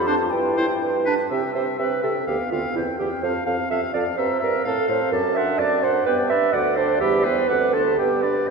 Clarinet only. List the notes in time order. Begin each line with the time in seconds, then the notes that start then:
0.07 D4
0.58 E4
1.07 D4
1.31 G4
1.55 C5
1.79 B4
2.04 A4
2.28 G4
2.51 F4
2.75 E4
2.99 G4
3.23 C5
3.46 F5
3.70 E5
3.93 D5
4.17 C5
4.43 A#4
4.67 A4
4.90 C5
5.12 A4
5.35 E5
5.58 D5
5.82 C5
6.06 B4
6.29 E5
6.53 D5
6.76 C5
7.01 G4
7.25 C5
7.48 B4
7.73 A4
7.99 G4